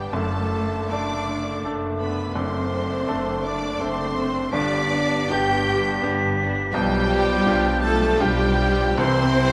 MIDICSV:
0, 0, Header, 1, 13, 480
1, 0, Start_track
1, 0, Key_signature, 1, "major"
1, 0, Tempo, 758534
1, 80, Time_signature, 3, 2, 24, 8
1, 1042, Tempo, 721154
1, 2962, Tempo, 781250
1, 3442, Tempo, 723764
1, 5362, Tempo, 766284
1, 6185, End_track
2, 0, Start_track
2, 0, Title_t, "Flute"
2, 0, Program_c, 0, 73
2, 0, Note_on_c, 0, 86, 64
2, 73, Note_off_c, 0, 86, 0
2, 85, Note_on_c, 0, 86, 67
2, 568, Note_off_c, 0, 86, 0
2, 576, Note_on_c, 0, 86, 70
2, 1502, Note_off_c, 0, 86, 0
2, 1514, Note_on_c, 0, 86, 78
2, 2460, Note_off_c, 0, 86, 0
2, 2489, Note_on_c, 0, 86, 78
2, 2790, Note_off_c, 0, 86, 0
2, 2956, Note_on_c, 0, 95, 83
2, 3414, Note_off_c, 0, 95, 0
2, 3440, Note_on_c, 0, 95, 87
2, 4393, Note_on_c, 0, 91, 97
2, 4403, Note_off_c, 0, 95, 0
2, 5358, Note_off_c, 0, 91, 0
2, 5362, Note_on_c, 0, 91, 93
2, 5839, Note_off_c, 0, 91, 0
2, 5850, Note_on_c, 0, 91, 93
2, 6185, Note_off_c, 0, 91, 0
2, 6185, End_track
3, 0, Start_track
3, 0, Title_t, "Violin section"
3, 0, Program_c, 1, 48
3, 0, Note_on_c, 1, 79, 94
3, 72, Note_on_c, 1, 81, 95
3, 76, Note_off_c, 1, 79, 0
3, 569, Note_on_c, 1, 86, 95
3, 572, Note_off_c, 1, 81, 0
3, 1038, Note_off_c, 1, 86, 0
3, 1275, Note_on_c, 1, 83, 90
3, 1500, Note_off_c, 1, 83, 0
3, 1514, Note_on_c, 1, 84, 93
3, 2237, Note_off_c, 1, 84, 0
3, 2243, Note_on_c, 1, 86, 98
3, 2484, Note_off_c, 1, 86, 0
3, 2487, Note_on_c, 1, 84, 109
3, 2957, Note_on_c, 1, 86, 115
3, 2964, Note_off_c, 1, 84, 0
3, 3429, Note_off_c, 1, 86, 0
3, 3442, Note_on_c, 1, 91, 106
3, 3919, Note_off_c, 1, 91, 0
3, 4375, Note_on_c, 1, 79, 127
3, 5084, Note_off_c, 1, 79, 0
3, 5110, Note_on_c, 1, 81, 118
3, 5352, Note_on_c, 1, 79, 127
3, 5358, Note_off_c, 1, 81, 0
3, 5837, Note_on_c, 1, 84, 127
3, 5844, Note_off_c, 1, 79, 0
3, 6185, Note_off_c, 1, 84, 0
3, 6185, End_track
4, 0, Start_track
4, 0, Title_t, "Trumpet section"
4, 0, Program_c, 2, 61
4, 0, Note_on_c, 2, 67, 71
4, 78, Note_on_c, 2, 69, 84
4, 82, Note_off_c, 2, 67, 0
4, 574, Note_on_c, 2, 74, 81
4, 575, Note_off_c, 2, 69, 0
4, 1041, Note_off_c, 2, 74, 0
4, 1281, Note_on_c, 2, 71, 75
4, 1503, Note_off_c, 2, 71, 0
4, 1517, Note_on_c, 2, 72, 74
4, 2224, Note_off_c, 2, 72, 0
4, 2239, Note_on_c, 2, 74, 90
4, 2477, Note_off_c, 2, 74, 0
4, 2481, Note_on_c, 2, 72, 84
4, 2951, Note_off_c, 2, 72, 0
4, 2959, Note_on_c, 2, 74, 102
4, 3440, Note_off_c, 2, 74, 0
4, 3443, Note_on_c, 2, 79, 93
4, 3910, Note_off_c, 2, 79, 0
4, 4385, Note_on_c, 2, 67, 116
4, 5089, Note_off_c, 2, 67, 0
4, 5113, Note_on_c, 2, 69, 107
4, 5356, Note_on_c, 2, 67, 98
4, 5359, Note_off_c, 2, 69, 0
4, 5842, Note_on_c, 2, 72, 127
4, 5846, Note_off_c, 2, 67, 0
4, 6185, Note_off_c, 2, 72, 0
4, 6185, End_track
5, 0, Start_track
5, 0, Title_t, "Violin section"
5, 0, Program_c, 3, 48
5, 0, Note_on_c, 3, 67, 78
5, 86, Note_off_c, 3, 67, 0
5, 94, Note_on_c, 3, 69, 81
5, 573, Note_off_c, 3, 69, 0
5, 585, Note_on_c, 3, 74, 76
5, 1046, Note_off_c, 3, 74, 0
5, 1293, Note_on_c, 3, 71, 70
5, 1510, Note_off_c, 3, 71, 0
5, 1527, Note_on_c, 3, 72, 79
5, 2244, Note_off_c, 3, 72, 0
5, 2248, Note_on_c, 3, 74, 84
5, 2486, Note_off_c, 3, 74, 0
5, 2496, Note_on_c, 3, 72, 88
5, 2968, Note_off_c, 3, 72, 0
5, 2970, Note_on_c, 3, 74, 100
5, 3436, Note_off_c, 3, 74, 0
5, 3449, Note_on_c, 3, 79, 97
5, 3923, Note_off_c, 3, 79, 0
5, 4384, Note_on_c, 3, 67, 111
5, 5088, Note_off_c, 3, 67, 0
5, 5125, Note_on_c, 3, 69, 106
5, 5357, Note_on_c, 3, 67, 110
5, 5365, Note_off_c, 3, 69, 0
5, 5845, Note_on_c, 3, 72, 121
5, 5846, Note_off_c, 3, 67, 0
5, 6185, Note_off_c, 3, 72, 0
5, 6185, End_track
6, 0, Start_track
6, 0, Title_t, "Grand piano"
6, 0, Program_c, 4, 0
6, 0, Control_c, 4, 64, 127
6, 0, Note_on_c, 4, 59, 57
6, 0, Note_on_c, 4, 62, 62
6, 0, Note_on_c, 4, 67, 65
6, 81, Note_on_c, 4, 30, 71
6, 83, Note_on_c, 4, 42, 80
6, 93, Control_c, 4, 64, 0
6, 96, Note_off_c, 4, 59, 0
6, 96, Note_off_c, 4, 62, 0
6, 97, Note_off_c, 4, 67, 0
6, 184, Control_c, 4, 64, 127
6, 576, Note_on_c, 4, 57, 66
6, 576, Note_on_c, 4, 62, 64
6, 577, Note_on_c, 4, 69, 70
6, 1017, Note_off_c, 4, 57, 0
6, 1017, Note_off_c, 4, 62, 0
6, 1017, Note_off_c, 4, 69, 0
6, 1041, Note_on_c, 4, 57, 66
6, 1042, Note_on_c, 4, 62, 60
6, 1046, Note_on_c, 4, 69, 70
6, 1494, Note_off_c, 4, 57, 0
6, 1494, Note_off_c, 4, 62, 0
6, 1495, Note_off_c, 4, 30, 0
6, 1496, Note_off_c, 4, 42, 0
6, 1496, Note_off_c, 4, 69, 0
6, 1510, Note_on_c, 4, 30, 75
6, 1514, Note_on_c, 4, 42, 81
6, 1532, Control_c, 4, 64, 0
6, 1632, Control_c, 4, 64, 127
6, 1991, Note_on_c, 4, 57, 67
6, 1995, Note_on_c, 4, 62, 69
6, 1998, Note_on_c, 4, 69, 80
6, 2452, Note_off_c, 4, 57, 0
6, 2454, Note_off_c, 4, 62, 0
6, 2455, Note_off_c, 4, 69, 0
6, 2477, Note_on_c, 4, 57, 65
6, 2478, Note_on_c, 4, 69, 74
6, 2481, Note_on_c, 4, 62, 68
6, 2929, Note_off_c, 4, 30, 0
6, 2931, Note_off_c, 4, 42, 0
6, 2932, Note_off_c, 4, 57, 0
6, 2933, Note_off_c, 4, 69, 0
6, 2934, Note_off_c, 4, 62, 0
6, 2959, Note_on_c, 4, 31, 80
6, 2959, Note_on_c, 4, 43, 95
6, 2974, Control_c, 4, 64, 0
6, 3069, Control_c, 4, 64, 127
6, 3436, Note_on_c, 4, 59, 81
6, 3441, Note_on_c, 4, 62, 80
6, 3445, Note_on_c, 4, 67, 91
6, 3889, Note_off_c, 4, 59, 0
6, 3892, Note_off_c, 4, 62, 0
6, 3894, Note_off_c, 4, 67, 0
6, 3914, Note_on_c, 4, 59, 80
6, 3916, Note_on_c, 4, 62, 77
6, 3922, Note_on_c, 4, 67, 88
6, 4359, Note_off_c, 4, 59, 0
6, 4360, Note_off_c, 4, 31, 0
6, 4360, Note_off_c, 4, 62, 0
6, 4361, Note_off_c, 4, 43, 0
6, 4363, Note_off_c, 4, 67, 0
6, 4386, Note_on_c, 4, 35, 99
6, 4386, Note_on_c, 4, 47, 95
6, 4401, Control_c, 4, 64, 0
6, 4513, Control_c, 4, 64, 127
6, 4868, Note_on_c, 4, 62, 89
6, 4870, Note_on_c, 4, 65, 84
6, 4872, Note_on_c, 4, 67, 93
6, 5333, Note_off_c, 4, 62, 0
6, 5334, Note_off_c, 4, 65, 0
6, 5335, Note_off_c, 4, 67, 0
6, 5356, Note_on_c, 4, 62, 81
6, 5358, Note_on_c, 4, 65, 81
6, 5361, Note_on_c, 4, 67, 93
6, 5820, Note_off_c, 4, 62, 0
6, 5821, Note_off_c, 4, 65, 0
6, 5822, Note_off_c, 4, 35, 0
6, 5822, Note_off_c, 4, 47, 0
6, 5823, Note_off_c, 4, 67, 0
6, 5843, Note_on_c, 4, 36, 104
6, 5844, Note_on_c, 4, 48, 92
6, 5861, Control_c, 4, 64, 0
6, 5956, Control_c, 4, 64, 127
6, 6185, Note_off_c, 4, 36, 0
6, 6185, Note_off_c, 4, 48, 0
6, 6185, End_track
7, 0, Start_track
7, 0, Title_t, "Viola section"
7, 0, Program_c, 5, 48
7, 0, Note_on_c, 5, 59, 59
7, 0, Note_on_c, 5, 62, 57
7, 68, Note_off_c, 5, 62, 0
7, 73, Note_off_c, 5, 59, 0
7, 76, Note_on_c, 5, 62, 59
7, 77, Note_on_c, 5, 57, 59
7, 314, Note_off_c, 5, 57, 0
7, 315, Note_off_c, 5, 62, 0
7, 322, Note_on_c, 5, 57, 65
7, 323, Note_on_c, 5, 62, 61
7, 796, Note_off_c, 5, 57, 0
7, 796, Note_off_c, 5, 62, 0
7, 803, Note_on_c, 5, 62, 64
7, 804, Note_on_c, 5, 57, 64
7, 1260, Note_off_c, 5, 57, 0
7, 1262, Note_off_c, 5, 62, 0
7, 1268, Note_on_c, 5, 57, 66
7, 1270, Note_on_c, 5, 62, 62
7, 1509, Note_off_c, 5, 57, 0
7, 1510, Note_off_c, 5, 62, 0
7, 1747, Note_on_c, 5, 57, 66
7, 1748, Note_on_c, 5, 62, 67
7, 2224, Note_off_c, 5, 57, 0
7, 2225, Note_off_c, 5, 62, 0
7, 2233, Note_on_c, 5, 62, 71
7, 2234, Note_on_c, 5, 57, 70
7, 2705, Note_off_c, 5, 57, 0
7, 2707, Note_off_c, 5, 62, 0
7, 2713, Note_on_c, 5, 57, 73
7, 2715, Note_on_c, 5, 62, 73
7, 2945, Note_off_c, 5, 62, 0
7, 2952, Note_off_c, 5, 57, 0
7, 2953, Note_on_c, 5, 62, 72
7, 2954, Note_on_c, 5, 59, 73
7, 3185, Note_off_c, 5, 59, 0
7, 3186, Note_off_c, 5, 62, 0
7, 3193, Note_on_c, 5, 59, 77
7, 3193, Note_on_c, 5, 62, 76
7, 3673, Note_off_c, 5, 59, 0
7, 3673, Note_off_c, 5, 62, 0
7, 3680, Note_on_c, 5, 62, 79
7, 3682, Note_on_c, 5, 59, 79
7, 4139, Note_off_c, 5, 62, 0
7, 4140, Note_off_c, 5, 59, 0
7, 4147, Note_on_c, 5, 59, 80
7, 4149, Note_on_c, 5, 62, 81
7, 4382, Note_off_c, 5, 59, 0
7, 4382, Note_off_c, 5, 62, 0
7, 4621, Note_on_c, 5, 65, 86
7, 4622, Note_on_c, 5, 55, 79
7, 5103, Note_off_c, 5, 55, 0
7, 5103, Note_off_c, 5, 65, 0
7, 5115, Note_on_c, 5, 65, 82
7, 5116, Note_on_c, 5, 55, 86
7, 5587, Note_off_c, 5, 55, 0
7, 5588, Note_off_c, 5, 65, 0
7, 5594, Note_on_c, 5, 55, 82
7, 5596, Note_on_c, 5, 65, 84
7, 5833, Note_off_c, 5, 55, 0
7, 5840, Note_off_c, 5, 65, 0
7, 5841, Note_on_c, 5, 55, 83
7, 5841, Note_on_c, 5, 64, 85
7, 6075, Note_off_c, 5, 55, 0
7, 6075, Note_off_c, 5, 64, 0
7, 6082, Note_on_c, 5, 55, 85
7, 6082, Note_on_c, 5, 64, 82
7, 6185, Note_off_c, 5, 55, 0
7, 6185, Note_off_c, 5, 64, 0
7, 6185, End_track
8, 0, Start_track
8, 0, Title_t, "Cello section"
8, 0, Program_c, 6, 48
8, 0, Note_on_c, 6, 55, 76
8, 81, Note_off_c, 6, 55, 0
8, 84, Note_on_c, 6, 57, 78
8, 571, Note_on_c, 6, 62, 85
8, 578, Note_off_c, 6, 57, 0
8, 1039, Note_off_c, 6, 62, 0
8, 1277, Note_on_c, 6, 59, 82
8, 1501, Note_off_c, 6, 59, 0
8, 1519, Note_on_c, 6, 60, 77
8, 2238, Note_on_c, 6, 62, 89
8, 2240, Note_off_c, 6, 60, 0
8, 2481, Note_off_c, 6, 62, 0
8, 2487, Note_on_c, 6, 60, 83
8, 2964, Note_off_c, 6, 60, 0
8, 2965, Note_on_c, 6, 62, 96
8, 3433, Note_off_c, 6, 62, 0
8, 3444, Note_on_c, 6, 67, 101
8, 3920, Note_off_c, 6, 67, 0
8, 4382, Note_on_c, 6, 55, 112
8, 5088, Note_off_c, 6, 55, 0
8, 5119, Note_on_c, 6, 57, 111
8, 5360, Note_on_c, 6, 55, 100
8, 5363, Note_off_c, 6, 57, 0
8, 5845, Note_on_c, 6, 60, 122
8, 5848, Note_off_c, 6, 55, 0
8, 6185, Note_off_c, 6, 60, 0
8, 6185, End_track
9, 0, Start_track
9, 0, Title_t, "French horn section"
9, 0, Program_c, 7, 60
9, 0, Note_on_c, 7, 55, 83
9, 82, Note_off_c, 7, 55, 0
9, 89, Note_on_c, 7, 57, 82
9, 580, Note_off_c, 7, 57, 0
9, 585, Note_on_c, 7, 62, 81
9, 1046, Note_off_c, 7, 62, 0
9, 1290, Note_on_c, 7, 59, 76
9, 1508, Note_off_c, 7, 59, 0
9, 1531, Note_on_c, 7, 60, 76
9, 2245, Note_on_c, 7, 62, 90
9, 2246, Note_off_c, 7, 60, 0
9, 2484, Note_off_c, 7, 62, 0
9, 2496, Note_on_c, 7, 60, 92
9, 2957, Note_on_c, 7, 62, 100
9, 2968, Note_off_c, 7, 60, 0
9, 3430, Note_off_c, 7, 62, 0
9, 3437, Note_on_c, 7, 67, 103
9, 3916, Note_off_c, 7, 67, 0
9, 4380, Note_on_c, 7, 55, 116
9, 5086, Note_off_c, 7, 55, 0
9, 5114, Note_on_c, 7, 57, 110
9, 5355, Note_off_c, 7, 57, 0
9, 5361, Note_on_c, 7, 55, 114
9, 5848, Note_off_c, 7, 55, 0
9, 5854, Note_on_c, 7, 60, 119
9, 6185, Note_off_c, 7, 60, 0
9, 6185, End_track
10, 0, Start_track
10, 0, Title_t, "Bassoon"
10, 0, Program_c, 8, 70
10, 0, Note_on_c, 8, 59, 73
10, 84, Note_on_c, 8, 57, 70
10, 93, Note_off_c, 8, 59, 0
10, 578, Note_off_c, 8, 57, 0
10, 584, Note_on_c, 8, 57, 73
10, 1506, Note_off_c, 8, 57, 0
10, 1520, Note_on_c, 8, 57, 73
10, 2463, Note_off_c, 8, 57, 0
10, 2484, Note_on_c, 8, 57, 79
10, 2788, Note_off_c, 8, 57, 0
10, 2963, Note_on_c, 8, 55, 79
10, 3417, Note_off_c, 8, 55, 0
10, 3445, Note_on_c, 8, 55, 95
10, 4371, Note_off_c, 8, 55, 0
10, 4382, Note_on_c, 8, 53, 94
10, 5339, Note_off_c, 8, 53, 0
10, 5361, Note_on_c, 8, 53, 97
10, 5852, Note_on_c, 8, 52, 99
10, 5862, Note_off_c, 8, 53, 0
10, 6185, Note_off_c, 8, 52, 0
10, 6185, End_track
11, 0, Start_track
11, 0, Title_t, "Trombone section"
11, 0, Program_c, 10, 61
11, 82, Note_on_c, 10, 50, 68
11, 83, Note_on_c, 10, 57, 69
11, 259, Note_off_c, 10, 50, 0
11, 260, Note_off_c, 10, 57, 0
11, 1512, Note_on_c, 10, 50, 74
11, 1519, Note_on_c, 10, 57, 76
11, 1685, Note_off_c, 10, 50, 0
11, 1688, Note_off_c, 10, 57, 0
11, 2958, Note_on_c, 10, 59, 85
11, 2965, Note_on_c, 10, 50, 81
11, 3130, Note_off_c, 10, 59, 0
11, 3134, Note_off_c, 10, 50, 0
11, 4382, Note_on_c, 10, 53, 90
11, 4386, Note_on_c, 10, 55, 91
11, 4556, Note_off_c, 10, 53, 0
11, 4558, Note_off_c, 10, 55, 0
11, 5850, Note_on_c, 10, 52, 97
11, 5851, Note_on_c, 10, 55, 96
11, 6019, Note_off_c, 10, 52, 0
11, 6020, Note_off_c, 10, 55, 0
11, 6185, End_track
12, 0, Start_track
12, 0, Title_t, "Timpani"
12, 0, Program_c, 11, 47
12, 5846, Note_on_c, 11, 48, 101
12, 6185, Note_off_c, 11, 48, 0
12, 6185, End_track
13, 0, Start_track
13, 0, Title_t, "Double bass section"
13, 0, Program_c, 12, 48
13, 79, Note_on_c, 12, 30, 75
13, 517, Note_off_c, 12, 30, 0
13, 577, Note_on_c, 12, 30, 81
13, 988, Note_off_c, 12, 30, 0
13, 1041, Note_on_c, 12, 30, 74
13, 1464, Note_off_c, 12, 30, 0
13, 1515, Note_on_c, 12, 30, 77
13, 1939, Note_off_c, 12, 30, 0
13, 2004, Note_on_c, 12, 30, 91
13, 2428, Note_off_c, 12, 30, 0
13, 2481, Note_on_c, 12, 30, 87
13, 2904, Note_off_c, 12, 30, 0
13, 2962, Note_on_c, 12, 31, 91
13, 3385, Note_off_c, 12, 31, 0
13, 3443, Note_on_c, 12, 31, 93
13, 3865, Note_off_c, 12, 31, 0
13, 3917, Note_on_c, 12, 31, 95
13, 4331, Note_off_c, 12, 31, 0
13, 4388, Note_on_c, 12, 35, 105
13, 4815, Note_off_c, 12, 35, 0
13, 4869, Note_on_c, 12, 35, 103
13, 5302, Note_off_c, 12, 35, 0
13, 5359, Note_on_c, 12, 35, 107
13, 5790, Note_off_c, 12, 35, 0
13, 5844, Note_on_c, 12, 36, 105
13, 6185, Note_off_c, 12, 36, 0
13, 6185, End_track
0, 0, End_of_file